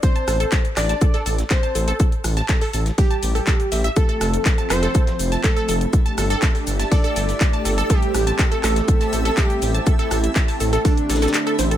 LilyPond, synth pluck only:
\new Staff \with { instrumentName = "Synth pluck" } { \time 4/4 \key a \minor \tempo 4 = 122 r16 a''16 a'16 a'16 a'16 r8 a''16 a'16 a'16 a'16 r8 a''16 a'16 a'16 | a'16 r8 a''16 a'16 a'16 a'16 r8 a''16 r16 a'16 a'16 r16 e''16 e''16 | a'16 a'16 a'16 r8 a''16 a'16 a'16 a'16 r8 a''16 a'16 a'16 a'16 r16 | r16 a''16 a'16 a'16 a'16 r8 a''16 a'16 a'16 a'16 r8 a''16 a'16 a'16 |
a'16 r8 a''16 a'16 a'16 a'16 r8 a''16 a'16 a'16 a'16 r8 a''16 | a'16 a'16 a'16 r8 a''16 a'16 a'16 a'16 r16 a'16 a'16 r16 a'16 c''16 a'16 | }